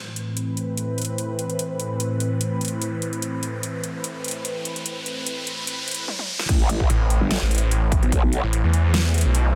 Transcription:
0.00 6.04 A2 medium
0.00 6.04 E3 medium
0.00 6.04 C4 medium
0.00 6.04 B4 medium
0.00 riser medium
0.16 closed hi-hat medium
0.37 closed hi-hat medium
0.57 closed hi-hat soft
0.77 closed hi-hat medium
0.98 closed hi-hat soft
1.02 closed hi-hat medium
1.05 closed hi-hat medium
1.18 closed hi-hat medium
1.39 closed hi-hat medium
1.50 closed hi-hat soft
1.59 closed hi-hat medium
1.80 closed hi-hat medium
2.00 closed hi-hat medium
2.20 closed hi-hat medium
2.41 closed hi-hat medium
2.61 closed hi-hat soft
2.65 closed hi-hat medium
2.68 closed hi-hat medium
2.82 closed hi-hat medium
3.02 closed hi-hat medium
3.13 closed hi-hat soft
3.22 closed hi-hat medium
3.43 closed hi-hat medium
3.63 closed hi-hat medium
3.84 closed hi-hat medium
4.04 closed hi-hat medium
4.24 closed hi-hat soft
4.28 closed hi-hat medium
4.31 closed hi-hat medium
4.45 closed hi-hat medium
4.65 closed hi-hat medium
4.76 closed hi-hat soft
4.86 closed hi-hat medium
5.06 closed hi-hat medium
5.27 closed hi-hat medium
5.47 closed hi-hat soft
5.67 closed hi-hat medium
5.88 closed hi-hat soft
5.91 closed hi-hat medium
5.95 closed hi-hat medium
6.08 high tom medium
6.19 high tom medium
6.39 snare medium
6.49 6.88 A1 medium
6.49 9.55 A3 medium
6.49 9.55 E4 medium
6.49 9.55 B4 medium
6.49 9.55 C5 medium
6.49 kick loud
6.49 closed hi-hat medium
6.49 crash loud
6.49 impact medium
6.69 closed hi-hat medium
6.80 kick medium
6.90 7.19 A1 loud
6.90 closed hi-hat medium
7.10 closed hi-hat medium
7.21 7.40 G1 loud
7.31 snare loud
7.31 closed hi-hat medium
7.41 8.01 A1 loud
7.51 closed hi-hat soft
7.55 closed hi-hat medium
7.58 closed hi-hat medium
7.71 closed hi-hat medium
7.92 kick loud
7.92 closed hi-hat medium
8.03 8.42 B1 loud
8.03 closed hi-hat soft
8.12 kick loud
8.12 closed hi-hat medium
8.33 closed hi-hat medium
8.43 8.62 A1 medium
8.53 closed hi-hat medium
8.64 9.23 E2 loud
8.73 closed hi-hat medium
8.94 snare loud
8.94 closed hi-hat medium
9.14 closed hi-hat medium
9.18 closed hi-hat medium
9.21 closed hi-hat medium
9.25 9.55 B1 loud
9.35 closed hi-hat medium
9.46 zap medium

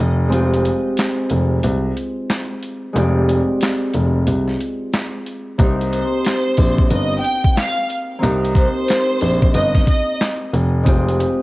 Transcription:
0.00 0.66 F1 loud
0.00 0.85 A#3 medium
0.00 0.29 C4 medium
0.00 0.37 D#4 medium
0.28 2.92 G#3 medium
0.28 2.94 C4 medium
0.28 2.91 F4 medium
0.28 2.91 G4 medium
0.28 closed hi-hat medium
0.33 2.92 C5 medium
0.53 closed hi-hat medium
0.65 closed hi-hat medium
0.97 snare loud
0.97 clap medium
0.97 closed hi-hat medium
1.30 1.56 F1 medium
1.30 closed hi-hat medium
1.63 1.89 C2 medium
1.63 closed hi-hat loud
1.97 closed hi-hat medium
2.30 snare loud
2.30 clap medium
2.30 closed hi-hat medium
2.63 closed hi-hat medium
2.93 3.37 F1 loud
2.93 5.64 G#3 medium
2.93 5.59 C4 medium
2.93 5.55 F4 medium
2.93 5.56 G4 medium
2.93 closed hi-hat medium
2.98 5.56 D5 medium
3.29 closed hi-hat medium
3.61 snare loud
3.61 clap medium
3.61 closed hi-hat medium
3.93 4.27 F1 medium
3.93 closed hi-hat medium
4.27 4.53 C2 medium
4.27 closed hi-hat loud
4.48 snare soft
4.60 closed hi-hat medium
4.94 snare loud
4.94 clap medium
4.94 closed hi-hat medium
5.26 closed hi-hat medium
5.58 6.01 C2 loud
5.58 8.18 A#3 medium
5.58 8.20 C4 medium
5.58 8.21 D#4 medium
5.58 8.20 G4 medium
5.58 kick loud
5.58 closed hi-hat medium
5.63 8.21 C5 medium
5.81 closed hi-hat medium
5.92 6.87 C5 medium
5.92 closed hi-hat medium
6.25 snare loud
6.25 clap medium
6.25 closed hi-hat medium
6.57 6.84 A#1 medium
6.57 kick medium
6.57 open hi-hat medium
6.78 kick medium
6.90 7.17 G1 medium
6.90 7.20 D#5 medium
6.90 closed hi-hat loud
7.21 7.52 G5 medium
7.21 closed hi-hat medium
7.44 kick medium
7.57 7.87 F5 medium
7.57 snare loud
7.57 clap medium
7.57 closed hi-hat medium
7.90 closed hi-hat medium
8.19 11.40 A#3 medium
8.19 10.84 C4 medium
8.19 10.92 D#4 medium
8.19 10.58 G4 medium
8.23 8.65 C2 loud
8.23 10.50 A#4 medium
8.23 closed hi-hat medium
8.45 closed hi-hat medium
8.55 9.50 C5 medium
8.55 kick medium
8.55 closed hi-hat medium
8.88 snare loud
8.88 clap medium
8.88 closed hi-hat medium
9.21 9.48 A#1 medium
9.21 open hi-hat medium
9.42 kick medium
9.54 9.81 G1 loud
9.54 9.84 D#5 medium
9.54 closed hi-hat loud
9.75 kick medium
9.75 snare soft
9.87 10.17 D#5 medium
9.87 kick medium
9.87 closed hi-hat medium
10.21 snare loud
10.21 clap medium
10.21 closed hi-hat medium
10.53 11.21 F1 loud
10.53 closed hi-hat medium
10.83 11.42 G#3 medium
10.83 11.42 C4 medium
10.83 11.42 F4 medium
10.83 11.42 G4 medium
10.83 kick loud
10.83 closed hi-hat medium
10.88 11.42 C5 medium
11.09 closed hi-hat medium
11.20 closed hi-hat medium

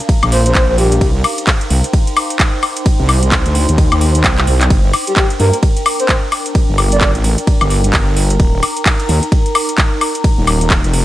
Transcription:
0.00 1.01 D4 medium
0.00 2.51 A#4 medium
0.00 2.51 F5 medium
0.00 2.51 A#5 medium
0.09 kick loud
0.09 ride medium
0.23 0.54 A#1 medium
0.23 closed hi-hat medium
0.23 high woodblock medium
0.32 0.41 C5 medium
0.32 open hi-hat loud
0.46 0.52 C5 medium
0.46 closed hi-hat medium
0.55 1.00 A#1 loud
0.55 0.64 C5 medium
0.55 kick loud
0.55 clap loud
0.55 ride medium
0.69 0.75 C5 medium
0.78 1.07 G4 loud
0.78 open hi-hat medium
0.92 closed hi-hat medium
1.01 1.23 C2 loud
1.01 4.70 D#4 medium
1.01 kick loud
1.01 ride medium
1.19 5.66 C5 medium
1.24 11.05 G5 medium
1.24 open hi-hat loud
1.24 high woodblock medium
1.38 closed hi-hat medium
1.47 kick loud
1.47 clap loud
1.47 ride medium
1.61 6.20 C6 medium
1.61 closed hi-hat medium
1.70 1.82 C2 loud
1.70 open hi-hat medium
1.84 closed hi-hat medium
1.93 kick loud
1.93 ride medium
2.07 closed hi-hat medium
2.17 open hi-hat loud
2.17 high woodblock medium
2.30 closed hi-hat medium
2.40 kick loud
2.40 clap loud
2.40 ride medium
2.63 open hi-hat medium
2.63 high woodblock medium
2.76 closed hi-hat medium
2.86 kick loud
2.86 ride medium
3.00 3.44 C2 medium
3.09 open hi-hat loud
3.09 high woodblock medium
3.23 closed hi-hat medium
3.32 kick loud
3.32 clap loud
3.32 ride medium
3.46 3.67 D2 loud
3.46 closed hi-hat medium
3.55 open hi-hat medium
3.69 3.90 D#2 medium
3.69 closed hi-hat medium
3.78 kick loud
3.78 ride medium
3.92 4.23 D#2 loud
3.92 closed hi-hat medium
3.92 high woodblock medium
4.01 open hi-hat loud
4.15 closed hi-hat medium
4.24 4.36 C2 medium
4.24 kick loud
4.24 clap loud
4.24 ride medium
4.38 4.46 C2 loud
4.38 clap medium
4.38 closed hi-hat soft
4.47 4.69 C2 medium
4.47 open hi-hat medium
4.61 clap medium
4.61 closed hi-hat medium
4.70 4.92 G1 loud
4.70 8.40 D4 medium
4.70 kick loud
4.70 ride medium
4.91 11.05 A#4 medium
4.91 open hi-hat loud
4.91 high woodblock medium
5.07 5.13 G4 medium
5.07 11.05 A#5 medium
5.07 closed hi-hat medium
5.16 5.25 G4 medium
5.16 kick loud
5.16 clap loud
5.16 ride medium
5.30 closed hi-hat medium
5.40 5.51 G2 loud
5.40 5.57 A#4 medium
5.40 open hi-hat medium
5.53 closed hi-hat medium
5.63 kick loud
5.63 ride medium
5.77 closed hi-hat medium
5.86 open hi-hat loud
5.86 high woodblock medium
6.00 6.14 C5 medium
6.00 closed hi-hat medium
6.09 kick loud
6.09 clap loud
6.09 ride medium
6.32 open hi-hat medium
6.32 high woodblock medium
6.46 closed hi-hat medium
6.55 kick loud
6.55 ride medium
6.69 7.13 G1 loud
6.78 open hi-hat loud
6.78 high woodblock medium
6.92 6.98 D5 medium
6.92 closed hi-hat medium
7.01 7.10 D5 medium
7.01 kick loud
7.01 clap loud
7.01 ride medium
7.15 7.36 A1 loud
7.15 closed hi-hat medium
7.24 open hi-hat loud
7.38 closed hi-hat medium
7.47 kick loud
7.47 ride medium
7.61 7.92 G1 loud
7.61 closed hi-hat medium
7.61 high woodblock medium
7.70 open hi-hat loud
7.84 closed hi-hat medium
7.93 8.38 G1 loud
7.93 kick loud
7.93 clap loud
7.93 ride medium
8.17 open hi-hat medium
8.30 closed hi-hat medium
8.40 8.61 D#1 loud
8.40 11.05 D#4 medium
8.40 kick loud
8.40 ride medium
8.63 open hi-hat loud
8.63 high woodblock medium
8.77 closed hi-hat medium
8.86 kick loud
8.86 clap loud
8.86 ride medium
9.00 closed hi-hat medium
9.09 9.21 D#2 loud
9.09 open hi-hat loud
9.23 closed hi-hat medium
9.32 kick loud
9.32 ride medium
9.46 closed hi-hat medium
9.55 open hi-hat loud
9.55 high woodblock medium
9.69 closed hi-hat medium
9.78 kick loud
9.78 clap loud
9.78 ride medium
10.01 open hi-hat loud
10.01 high woodblock medium
10.15 closed hi-hat medium
10.24 kick loud
10.24 ride medium
10.38 10.82 D#1 loud
10.47 open hi-hat loud
10.47 high woodblock medium
10.61 closed hi-hat medium
10.70 kick loud
10.70 clap loud
10.70 ride medium
10.84 11.05 F1 loud
10.84 closed hi-hat medium
10.94 open hi-hat loud

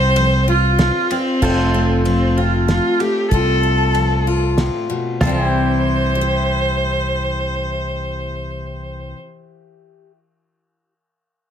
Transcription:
0.00 0.89 C2 loud
0.00 1.10 C4 medium
0.00 0.20 F4 medium
0.00 0.48 C5 loud
0.16 0.73 F3 medium
0.16 ride medium
0.48 1.38 F4 medium
0.48 1.13 F4 medium
0.79 1.36 C3 medium
0.79 snare medium
0.79 ride medium
1.11 1.38 C4 medium
1.11 2.05 C4 loud
1.11 ride medium
1.42 2.79 F1 medium
1.42 1.99 F2 medium
1.42 1.74 A3 medium
1.42 2.37 C4 medium
1.42 5.17 F4 medium
1.42 3.29 F4 medium
1.42 5.18 A4 medium
1.42 5.18 C5 medium
1.42 kick loud
1.42 crash medium
1.74 2.99 A3 medium
2.05 2.62 F3 medium
2.05 2.38 C4 medium
2.05 ride medium
2.37 3.32 C4 medium
2.37 2.68 F4 medium
2.68 3.25 F3 medium
2.68 3.01 F4 medium
2.68 snare medium
2.68 ride medium
3.00 3.28 A3 medium
3.00 3.30 G4 loud
3.00 ride medium
3.31 4.68 C2 medium
3.31 3.88 F2 medium
3.31 3.62 A3 medium
3.31 5.18 C4 medium
3.31 4.26 F4 medium
3.31 4.54 A4 loud
3.31 kick loud
3.31 ride medium
3.63 5.17 A3 medium
3.95 4.51 F3 medium
3.95 ride medium
4.27 5.18 F4 medium
4.58 4.89 A2 medium
4.58 snare medium
4.58 ride medium
4.90 5.21 B2 medium
5.20 9.12 C2 medium
5.20 9.17 C3 medium
5.20 9.19 E3 medium
5.20 5.42 F4 medium
5.20 5.37 A4 medium
5.20 9.12 C5 medium
5.20 9.15 C5 medium
5.20 snare medium
5.20 floor tom medium
5.25 6.15 G3 medium
5.25 9.23 C4 medium
5.25 6.21 E4 medium
5.37 5.48 G#4 medium
5.42 9.13 E4 medium
5.48 9.14 G4 medium
6.15 10.11 G4 medium
6.21 10.17 E5 medium

